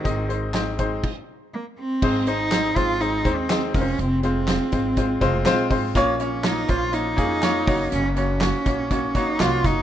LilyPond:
<<
  \new Staff \with { instrumentName = "Cello" } { \time 4/4 \key aes \mixolydian \tempo 4 = 122 ees8 r2 r8 bes8 c'8~ | c'8 ees'4 f'8 ees'8. c'8. des'8 | c'8 c'2. r8 | r8 des'8 ees'8 f'8 ees'2 |
des'8 des'2 ees'8 f'8 ees'8 | }
  \new Staff \with { instrumentName = "Grand piano" } { \time 4/4 \key aes \mixolydian <aes c' ees' ees''>8 <aes c' ees' c''>8 <aes c' ees' c''>8 <aes c' ees' c''>8 r2 | <aes c' ees' c''>8 <aes c' ees' c''>8 <aes c' ees' c''>8 <aes c' ees' c''>8 <aes c' ees' c''>8 <aes c' ees' c''>8 <aes c' ees' c''>8 <aes c' f' bes' c''>8~ | <aes c' f' bes' c''>8 <aes c' f' c''>8 <aes c' f' c''>8 <aes c' f' c''>8 <aes c' f' c''>8 <aes c' f' c''>8 <aes c' f' c''>8 <aes c' f' c''>8 | <bes des' f' des''>8 <bes des' f' des''>8 <bes des' f' des''>8 <bes des' f' c''>8 <bes des' f' des''>8 <bes des' f' aes'>8 <bes des' f' des''>8 <bes des' ges' des''>8~ |
<bes des' ges' des''>8 <bes des' ges' des''>8 <bes des' ges' des''>8 <bes des' ges' des''>8 <bes des' ges' des''>8 <bes des' ges' des''>8 <bes des' ges' des''>8 <bes des' ges' des''>8 | }
  \new Staff \with { instrumentName = "Grand piano" } { \clef bass \time 4/4 \key aes \mixolydian aes,4 r2. | aes,4. r2 r8 | r1 | bes,4. r2 r8 |
r1 | }
  \new Staff \with { instrumentName = "Upright bass" } { \clef bass \time 4/4 \key aes \mixolydian aes,,2 r2 | aes,,4. aes,,4 ees,4 f,,8 | f,,4~ f,,16 r16 aes,,4 f,,8 bes,,8 aes,,8 | bes,,4. bes,,4 f,4 ges,,8 |
ges,,4~ ges,,16 r16 bes,,4 ges,,8 c,8 ges,,8 | }
  \new DrumStaff \with { instrumentName = "Drums" } \drummode { \time 4/4 <hh bd>8 hh8 <hc hh sn>8 <hh bd>8 <cymc bd>4 r4 | <cymc bd>8 hh8 <hc hh sn>8 <hh bd>8 hh8 <hh bd>8 <hc hh sn>8 <hho bd sn>8 | hh8 hh8 <hc hh sn>8 <hh bd>8 <hh bd>8 <hh bd>8 <hc hh sn>8 <hho bd>8 | <hh bd>8 hh8 <hc hh sn>8 <hh bd>8 hh8 <hh bd>8 <hc hh sn>8 <hho bd>8 |
hh8 hh8 <hc hh sn>8 <hh bd>8 <hh bd>8 <hh bd>8 <hc hh sn>8 <hh bd sn>8 | }
>>